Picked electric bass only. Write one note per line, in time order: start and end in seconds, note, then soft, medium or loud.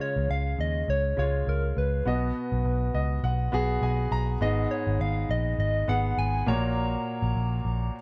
0.16 0.27 C#2 medium
0.29 0.54 C#2 medium
0.59 0.83 D#2 medium
0.88 1.12 C#2 medium
1.18 1.42 C#2 medium
1.47 1.71 C#2 medium
1.77 2.01 C#2 medium
2.06 2.30 B1 medium
2.52 2.63 B1 medium
2.65 2.89 B1 medium
2.94 3.18 C#2 medium
3.23 3.48 B1 medium
3.53 3.77 B1 medium
3.82 4.06 B1 medium
4.11 4.36 B1 medium
4.41 4.65 G#1 medium
4.87 4.98 G#1 medium
5.00 5.24 G#1 loud
5.29 5.53 A#1 medium
5.59 5.83 G#1 loud
5.88 6.12 G#1 medium
6.17 6.42 G#1 medium
6.47 6.95 A#1 medium
7.22 7.33 A#1 medium
7.35 7.59 A#1 medium
7.65 7.89 A#1 medium